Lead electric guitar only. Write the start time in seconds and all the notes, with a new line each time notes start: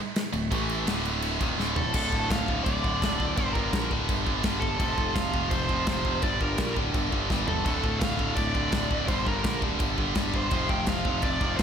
1.77 A4
1.94 A4
2.31 F5
2.64 D5
3.37 C5
3.53 A#4
4.60 A4
4.78 A4
5.15 F5
5.50 C5
6.23 D5
6.41 A#4
7.48 A4
7.65 A4
7.99 F5
8.35 D5
9.08 C5
9.26 A#4
10.36 C5
10.70 G5
10.89 F5
11.23 D5
11.57 C5